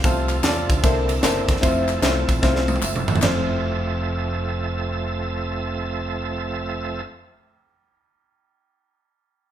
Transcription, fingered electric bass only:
0.04 0.38 C2 loud
0.43 0.65 E2 loud
0.70 0.82 D2 medium
0.84 1.18 C2 loud
1.23 1.57 F#1 medium
1.63 1.97 F1 loud
2.02 2.24 C2 loud
2.28 2.41 A#1 medium
2.43 2.77 C2 loud
2.83 3.16 F#1 medium
3.22 7.01 F1 loud

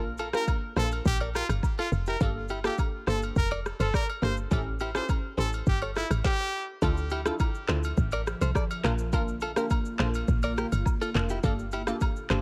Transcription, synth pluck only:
0.00 0.12 A#3 medium
0.00 0.12 D4 medium
0.00 0.12 F4 medium
0.00 0.12 A#4 loud
0.34 0.73 A#3 medium
0.34 0.73 D4 medium
0.34 0.73 F4 medium
0.34 0.73 A#4 medium
0.76 1.03 A#3 medium
0.76 1.03 D4 medium
0.76 1.03 F4 medium
0.76 1.03 A#4 medium
2.21 2.43 A#3 medium
2.21 2.43 D4 medium
2.21 2.43 G4 medium
2.21 2.43 A4 loud
2.64 3.04 A#3 medium
2.64 3.04 D4 medium
2.64 3.04 G4 medium
2.64 3.04 A4 medium
3.07 3.34 A#3 medium
3.07 3.34 D4 medium
3.07 3.34 G4 medium
3.07 3.34 A4 medium
4.22 4.44 A#3 medium
4.22 4.44 D4 medium
4.22 4.44 G4 medium
4.22 4.45 A4 medium
4.51 4.73 C#4 loud
4.51 4.73 E4 medium
4.51 4.73 G4 medium
4.51 4.73 A4 loud
4.95 5.34 C#4 medium
4.95 5.35 E4 medium
4.95 5.35 G4 medium
4.95 5.35 A4 medium
5.37 5.64 C#4 medium
5.37 5.64 E4 medium
5.37 5.65 G4 medium
5.37 5.65 A4 medium
6.82 7.04 D4 loud
6.82 7.04 E4 medium
6.82 7.04 F4 medium
6.82 7.04 A4 loud
7.26 7.65 D4 medium
7.26 7.65 E4 medium
7.26 7.65 F4 medium
7.26 7.66 A4 medium
7.68 7.95 D4 medium
7.68 7.95 E4 medium
7.68 7.95 F4 medium
7.68 7.96 A4 medium
8.84 9.11 A#3 medium
8.84 9.11 D4 medium
8.84 9.11 F4 medium
8.84 9.11 A#4 loud
9.13 9.35 A#3 medium
9.13 9.35 D4 medium
9.13 9.35 F4 medium
9.13 9.35 A#4 loud
9.57 9.96 A#3 medium
9.57 9.96 D4 medium
9.57 9.96 F4 medium
9.57 9.96 A#4 medium
9.99 10.26 A#3 medium
9.99 10.26 D4 medium
9.99 10.26 F4 medium
9.99 10.26 A#4 medium
11.15 11.37 A#3 medium
11.15 11.37 D4 medium
11.15 11.37 F4 medium
11.15 11.37 A#4 medium
11.43 11.66 A#3 loud
11.43 11.66 D4 medium
11.43 11.66 G4 medium
11.43 11.66 A4 loud
11.87 12.27 A#3 medium
11.87 12.27 D4 medium
11.87 12.27 G4 medium
11.87 12.27 A4 medium
12.30 12.42 A#3 medium
12.30 12.42 D4 medium
12.30 12.42 G4 medium
12.30 12.42 A4 medium

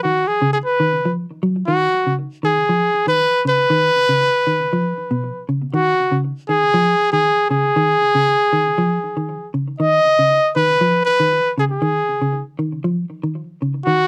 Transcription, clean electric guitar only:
0.05 0.24 D#3 medium
0.42 0.61 C#3 medium
0.80 0.99 D#3 medium
1.05 1.25 F3 medium
1.43 1.62 F#3 medium
1.68 1.88 D#3 medium
2.07 2.26 C#3 medium
2.43 2.63 D#3 medium
2.69 2.89 F3 medium
3.07 3.27 D#3 medium
3.45 3.65 C#3 medium
3.70 3.90 D#3 medium
4.09 4.29 C#3 medium
4.47 4.67 D#3 medium
4.73 4.92 F3 medium
5.11 5.30 B2 medium
5.49 5.68 C#3 medium
5.74 5.93 D#3 medium
6.12 6.32 C#3 medium
6.49 6.69 D#3 medium
6.74 6.94 F3 medium
7.13 7.33 D#3 medium
7.51 7.71 C#3 medium
7.76 7.96 D#3 medium
8.15 8.35 C#3 medium
8.53 8.73 D#3 medium
8.78 8.98 F3 medium
9.17 9.36 D#3 medium
9.54 9.74 C#3 medium
9.80 10.00 D#3 medium
10.19 10.38 C#3 medium
10.56 10.76 D#3 medium
10.81 11.01 F3 medium
11.20 11.40 D#3 medium
11.58 11.77 C#3 medium
11.82 12.02 D#3 medium
12.22 12.41 C#3 medium
12.59 12.79 D#3 medium
12.84 13.04 F3 medium
13.23 13.43 D#3 medium
13.62 13.81 C#3 medium
13.87 14.06 D#3 medium

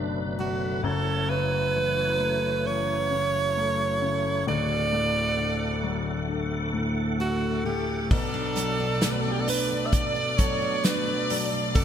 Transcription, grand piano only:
0.00 0.80 F#1 medium
0.00 0.80 F#2 medium
0.00 0.36 F#3 medium
0.00 0.86 A3 medium
0.00 0.86 D4 medium
0.38 0.83 F#3 medium
0.83 4.43 F#1 medium
0.83 4.43 F#2 medium
1.28 3.07 C#3 medium
1.75 2.65 E3 medium
2.20 3.55 A3 medium
2.66 4.44 E3 medium
3.11 4.00 C#3 medium
3.57 4.45 A3 medium
4.02 4.46 C#3 medium
4.47 8.07 D1 medium
4.47 8.07 D2 medium
4.93 6.71 A2 medium
5.37 6.27 D3 medium
5.83 7.61 F#3 medium
6.29 8.07 D3 medium
6.74 7.63 A2 soft
7.20 8.08 A3 medium
7.65 8.10 A2 medium
8.11 11.71 B1 medium
8.11 11.71 B2 medium
8.56 10.34 F#3 medium
9.01 9.92 A3 medium
9.47 10.83 D4 medium
9.93 11.71 A3 medium
10.38 11.29 F#3 medium
10.85 11.85 D4 medium
11.30 11.85 F#3 medium
11.75 11.85 F#1 medium
11.75 11.85 F#2 medium

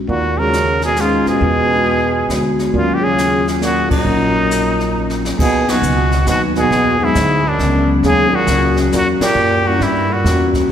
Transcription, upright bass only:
0.09 1.22 D#2 medium
1.26 muted upright bass stroke soft
1.41 2.25 E2 medium
2.29 2.70 D2 medium
2.74 3.87 D#2 medium
3.91 4.04 A#2 medium
4.05 5.34 A#1 medium
5.39 5.81 B1 medium
5.82 6.25 C#2 medium
6.27 6.70 D#2 medium
6.71 7.14 E2 medium
7.15 7.58 D2 medium
7.59 8.02 C#2 medium
8.03 8.46 D#2 medium
8.47 8.90 C#2 medium
8.91 9.19 E2 medium
9.20 muted upright bass stroke soft
9.35 9.78 F#2 medium
9.80 10.23 G2 medium
10.24 10.67 E2 medium

